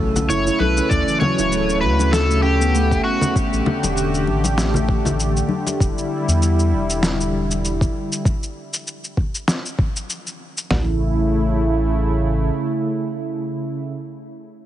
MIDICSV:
0, 0, Header, 1, 6, 480
1, 0, Start_track
1, 0, Tempo, 612245
1, 710, Time_signature, 4, 2, 24, 8
1, 11492, End_track
2, 0, Start_track
2, 0, Title_t, "Electric slide guitar"
2, 0, Program_c, 0, 29
2, 233, Note_on_c, 0, 73, 97
2, 468, Note_on_c, 0, 71, 99
2, 479, Note_off_c, 0, 73, 0
2, 700, Note_on_c, 0, 74, 117
2, 716, Note_off_c, 0, 71, 0
2, 938, Note_off_c, 0, 74, 0
2, 942, Note_on_c, 0, 73, 109
2, 1416, Note_off_c, 0, 73, 0
2, 1419, Note_on_c, 0, 71, 95
2, 1664, Note_on_c, 0, 69, 102
2, 1672, Note_off_c, 0, 71, 0
2, 1900, Note_off_c, 0, 69, 0
2, 1903, Note_on_c, 0, 67, 92
2, 2356, Note_off_c, 0, 67, 0
2, 2385, Note_on_c, 0, 66, 72
2, 2611, Note_off_c, 0, 66, 0
2, 11492, End_track
3, 0, Start_track
3, 0, Title_t, "Handpan"
3, 0, Program_c, 1, 114
3, 0, Note_on_c, 1, 54, 68
3, 117, Note_off_c, 1, 54, 0
3, 124, Note_on_c, 1, 61, 69
3, 225, Note_off_c, 1, 61, 0
3, 229, Note_on_c, 1, 64, 101
3, 306, Note_off_c, 1, 64, 0
3, 364, Note_on_c, 1, 64, 96
3, 460, Note_off_c, 1, 64, 0
3, 471, Note_on_c, 1, 69, 99
3, 591, Note_off_c, 1, 69, 0
3, 603, Note_on_c, 1, 61, 98
3, 699, Note_off_c, 1, 61, 0
3, 711, Note_on_c, 1, 57, 89
3, 837, Note_off_c, 1, 57, 0
3, 843, Note_on_c, 1, 52, 84
3, 904, Note_off_c, 1, 52, 0
3, 950, Note_on_c, 1, 54, 104
3, 1071, Note_off_c, 1, 54, 0
3, 1086, Note_on_c, 1, 64, 107
3, 1181, Note_off_c, 1, 64, 0
3, 1190, Note_on_c, 1, 57, 92
3, 1267, Note_off_c, 1, 57, 0
3, 1324, Note_on_c, 1, 61, 69
3, 1425, Note_off_c, 1, 61, 0
3, 1431, Note_on_c, 1, 66, 71
3, 1558, Note_off_c, 1, 66, 0
3, 1565, Note_on_c, 1, 61, 74
3, 1660, Note_off_c, 1, 61, 0
3, 1670, Note_on_c, 1, 69, 98
3, 1747, Note_off_c, 1, 69, 0
3, 1804, Note_on_c, 1, 57, 76
3, 1905, Note_off_c, 1, 57, 0
3, 1909, Note_on_c, 1, 61, 103
3, 2037, Note_off_c, 1, 61, 0
3, 2043, Note_on_c, 1, 59, 98
3, 2145, Note_off_c, 1, 59, 0
3, 2151, Note_on_c, 1, 57, 102
3, 2227, Note_off_c, 1, 57, 0
3, 2286, Note_on_c, 1, 61, 73
3, 2384, Note_off_c, 1, 61, 0
3, 2393, Note_on_c, 1, 61, 76
3, 2512, Note_off_c, 1, 61, 0
3, 2525, Note_on_c, 1, 61, 73
3, 2620, Note_off_c, 1, 61, 0
3, 11492, End_track
4, 0, Start_track
4, 0, Title_t, "Analog synth pad"
4, 0, Program_c, 2, 89
4, 0, Note_on_c, 2, 49, 83
4, 0, Note_on_c, 2, 57, 70
4, 689, Note_off_c, 2, 57, 0
4, 690, Note_off_c, 2, 49, 0
4, 713, Note_on_c, 2, 57, 72
4, 715, Note_on_c, 2, 49, 81
4, 2613, Note_off_c, 2, 57, 0
4, 2614, Note_off_c, 2, 49, 0
4, 2635, Note_on_c, 2, 57, 72
4, 2635, Note_on_c, 2, 67, 86
4, 2637, Note_on_c, 2, 50, 76
4, 4534, Note_off_c, 2, 57, 0
4, 4534, Note_off_c, 2, 67, 0
4, 4555, Note_on_c, 2, 64, 88
4, 4556, Note_on_c, 2, 55, 74
4, 6442, Note_off_c, 2, 50, 0
4, 6454, Note_off_c, 2, 55, 0
4, 6454, Note_off_c, 2, 64, 0
4, 8392, Note_on_c, 2, 64, 86
4, 8393, Note_on_c, 2, 57, 70
4, 8394, Note_on_c, 2, 49, 74
4, 10907, Note_off_c, 2, 64, 0
4, 10908, Note_off_c, 2, 49, 0
4, 10908, Note_off_c, 2, 57, 0
4, 11492, End_track
5, 0, Start_track
5, 0, Title_t, "Sub bass"
5, 0, Program_c, 3, 38
5, 0, Note_on_c, 3, 35, 91
5, 223, Note_off_c, 3, 35, 0
5, 228, Note_on_c, 3, 30, 104
5, 391, Note_off_c, 3, 30, 0
5, 469, Note_on_c, 3, 35, 92
5, 631, Note_off_c, 3, 35, 0
5, 711, Note_on_c, 3, 38, 101
5, 795, Note_off_c, 3, 38, 0
5, 1085, Note_on_c, 3, 26, 93
5, 1432, Note_on_c, 3, 38, 86
5, 1444, Note_off_c, 3, 26, 0
5, 2329, Note_off_c, 3, 38, 0
5, 2764, Note_on_c, 3, 33, 91
5, 2831, Note_off_c, 3, 33, 0
5, 3004, Note_on_c, 3, 28, 103
5, 3351, Note_on_c, 3, 33, 90
5, 3363, Note_off_c, 3, 28, 0
5, 4248, Note_off_c, 3, 33, 0
5, 4551, Note_on_c, 3, 28, 106
5, 4635, Note_off_c, 3, 28, 0
5, 4923, Note_on_c, 3, 40, 91
5, 5270, Note_on_c, 3, 28, 96
5, 5282, Note_off_c, 3, 40, 0
5, 6168, Note_off_c, 3, 28, 0
5, 8392, Note_on_c, 3, 33, 98
5, 9800, Note_off_c, 3, 33, 0
5, 11492, End_track
6, 0, Start_track
6, 0, Title_t, "Drums"
6, 124, Note_on_c, 9, 64, 93
6, 126, Note_on_c, 9, 82, 66
6, 202, Note_off_c, 9, 64, 0
6, 204, Note_off_c, 9, 82, 0
6, 235, Note_on_c, 9, 82, 58
6, 313, Note_off_c, 9, 82, 0
6, 368, Note_on_c, 9, 82, 34
6, 447, Note_off_c, 9, 82, 0
6, 471, Note_on_c, 9, 63, 58
6, 549, Note_off_c, 9, 63, 0
6, 606, Note_on_c, 9, 82, 68
6, 611, Note_on_c, 9, 62, 49
6, 684, Note_off_c, 9, 82, 0
6, 690, Note_off_c, 9, 62, 0
6, 710, Note_on_c, 9, 36, 127
6, 713, Note_on_c, 9, 82, 59
6, 789, Note_off_c, 9, 36, 0
6, 792, Note_off_c, 9, 82, 0
6, 847, Note_on_c, 9, 82, 36
6, 925, Note_off_c, 9, 82, 0
6, 948, Note_on_c, 9, 62, 47
6, 952, Note_on_c, 9, 64, 93
6, 1027, Note_off_c, 9, 62, 0
6, 1030, Note_off_c, 9, 64, 0
6, 1087, Note_on_c, 9, 82, 71
6, 1089, Note_on_c, 9, 62, 49
6, 1166, Note_off_c, 9, 82, 0
6, 1167, Note_off_c, 9, 62, 0
6, 1194, Note_on_c, 9, 82, 61
6, 1272, Note_off_c, 9, 82, 0
6, 1329, Note_on_c, 9, 82, 36
6, 1407, Note_off_c, 9, 82, 0
6, 1434, Note_on_c, 9, 62, 36
6, 1512, Note_off_c, 9, 62, 0
6, 1561, Note_on_c, 9, 62, 53
6, 1570, Note_on_c, 9, 82, 65
6, 1639, Note_off_c, 9, 62, 0
6, 1648, Note_off_c, 9, 82, 0
6, 1670, Note_on_c, 9, 38, 79
6, 1675, Note_on_c, 9, 82, 55
6, 1748, Note_off_c, 9, 38, 0
6, 1754, Note_off_c, 9, 82, 0
6, 1808, Note_on_c, 9, 63, 33
6, 1809, Note_on_c, 9, 82, 35
6, 1886, Note_off_c, 9, 63, 0
6, 1887, Note_off_c, 9, 82, 0
6, 2049, Note_on_c, 9, 82, 66
6, 2128, Note_off_c, 9, 82, 0
6, 2155, Note_on_c, 9, 82, 55
6, 2234, Note_off_c, 9, 82, 0
6, 2285, Note_on_c, 9, 36, 90
6, 2289, Note_on_c, 9, 82, 33
6, 2364, Note_off_c, 9, 36, 0
6, 2367, Note_off_c, 9, 82, 0
6, 2520, Note_on_c, 9, 64, 82
6, 2528, Note_on_c, 9, 82, 70
6, 2598, Note_off_c, 9, 64, 0
6, 2607, Note_off_c, 9, 82, 0
6, 2632, Note_on_c, 9, 36, 115
6, 2635, Note_on_c, 9, 82, 50
6, 2710, Note_off_c, 9, 36, 0
6, 2713, Note_off_c, 9, 82, 0
6, 2768, Note_on_c, 9, 82, 33
6, 2847, Note_off_c, 9, 82, 0
6, 2871, Note_on_c, 9, 62, 51
6, 2872, Note_on_c, 9, 64, 86
6, 2949, Note_off_c, 9, 62, 0
6, 2950, Note_off_c, 9, 64, 0
6, 3005, Note_on_c, 9, 62, 57
6, 3008, Note_on_c, 9, 82, 68
6, 3084, Note_off_c, 9, 62, 0
6, 3087, Note_off_c, 9, 82, 0
6, 3114, Note_on_c, 9, 82, 58
6, 3192, Note_off_c, 9, 82, 0
6, 3248, Note_on_c, 9, 82, 32
6, 3327, Note_off_c, 9, 82, 0
6, 3350, Note_on_c, 9, 62, 38
6, 3429, Note_off_c, 9, 62, 0
6, 3481, Note_on_c, 9, 62, 47
6, 3487, Note_on_c, 9, 82, 65
6, 3559, Note_off_c, 9, 62, 0
6, 3565, Note_off_c, 9, 82, 0
6, 3589, Note_on_c, 9, 38, 74
6, 3595, Note_on_c, 9, 82, 54
6, 3667, Note_off_c, 9, 38, 0
6, 3673, Note_off_c, 9, 82, 0
6, 3717, Note_on_c, 9, 64, 81
6, 3730, Note_on_c, 9, 82, 32
6, 3795, Note_off_c, 9, 64, 0
6, 3809, Note_off_c, 9, 82, 0
6, 3831, Note_on_c, 9, 36, 97
6, 3909, Note_off_c, 9, 36, 0
6, 3962, Note_on_c, 9, 64, 83
6, 3969, Note_on_c, 9, 82, 64
6, 4040, Note_off_c, 9, 64, 0
6, 4048, Note_off_c, 9, 82, 0
6, 4075, Note_on_c, 9, 82, 52
6, 4153, Note_off_c, 9, 82, 0
6, 4209, Note_on_c, 9, 82, 32
6, 4287, Note_off_c, 9, 82, 0
6, 4302, Note_on_c, 9, 63, 55
6, 4380, Note_off_c, 9, 63, 0
6, 4443, Note_on_c, 9, 62, 53
6, 4447, Note_on_c, 9, 82, 67
6, 4521, Note_off_c, 9, 62, 0
6, 4525, Note_off_c, 9, 82, 0
6, 4550, Note_on_c, 9, 36, 123
6, 4556, Note_on_c, 9, 82, 55
6, 4629, Note_off_c, 9, 36, 0
6, 4634, Note_off_c, 9, 82, 0
6, 4690, Note_on_c, 9, 82, 32
6, 4768, Note_off_c, 9, 82, 0
6, 4930, Note_on_c, 9, 82, 64
6, 5009, Note_off_c, 9, 82, 0
6, 5036, Note_on_c, 9, 82, 57
6, 5114, Note_off_c, 9, 82, 0
6, 5169, Note_on_c, 9, 82, 32
6, 5247, Note_off_c, 9, 82, 0
6, 5409, Note_on_c, 9, 82, 69
6, 5488, Note_off_c, 9, 82, 0
6, 5510, Note_on_c, 9, 38, 78
6, 5516, Note_on_c, 9, 82, 55
6, 5588, Note_off_c, 9, 38, 0
6, 5594, Note_off_c, 9, 82, 0
6, 5650, Note_on_c, 9, 82, 33
6, 5728, Note_off_c, 9, 82, 0
6, 5889, Note_on_c, 9, 82, 65
6, 5967, Note_off_c, 9, 82, 0
6, 5997, Note_on_c, 9, 82, 51
6, 6075, Note_off_c, 9, 82, 0
6, 6125, Note_on_c, 9, 36, 97
6, 6131, Note_on_c, 9, 82, 33
6, 6203, Note_off_c, 9, 36, 0
6, 6209, Note_off_c, 9, 82, 0
6, 6370, Note_on_c, 9, 82, 67
6, 6448, Note_off_c, 9, 82, 0
6, 6471, Note_on_c, 9, 36, 116
6, 6476, Note_on_c, 9, 82, 55
6, 6549, Note_off_c, 9, 36, 0
6, 6554, Note_off_c, 9, 82, 0
6, 6610, Note_on_c, 9, 82, 35
6, 6688, Note_off_c, 9, 82, 0
6, 6849, Note_on_c, 9, 82, 69
6, 6927, Note_off_c, 9, 82, 0
6, 6957, Note_on_c, 9, 82, 55
6, 7035, Note_off_c, 9, 82, 0
6, 7089, Note_on_c, 9, 82, 33
6, 7167, Note_off_c, 9, 82, 0
6, 7192, Note_on_c, 9, 36, 56
6, 7270, Note_off_c, 9, 36, 0
6, 7329, Note_on_c, 9, 82, 66
6, 7407, Note_off_c, 9, 82, 0
6, 7431, Note_on_c, 9, 38, 81
6, 7437, Note_on_c, 9, 82, 54
6, 7509, Note_off_c, 9, 38, 0
6, 7515, Note_off_c, 9, 82, 0
6, 7570, Note_on_c, 9, 82, 33
6, 7648, Note_off_c, 9, 82, 0
6, 7672, Note_on_c, 9, 36, 106
6, 7751, Note_off_c, 9, 36, 0
6, 7810, Note_on_c, 9, 82, 68
6, 7889, Note_off_c, 9, 82, 0
6, 7917, Note_on_c, 9, 82, 57
6, 7995, Note_off_c, 9, 82, 0
6, 8051, Note_on_c, 9, 82, 32
6, 8130, Note_off_c, 9, 82, 0
6, 8291, Note_on_c, 9, 82, 67
6, 8369, Note_off_c, 9, 82, 0
6, 8393, Note_on_c, 9, 38, 107
6, 8393, Note_on_c, 9, 43, 107
6, 8471, Note_off_c, 9, 38, 0
6, 8471, Note_off_c, 9, 43, 0
6, 11492, End_track
0, 0, End_of_file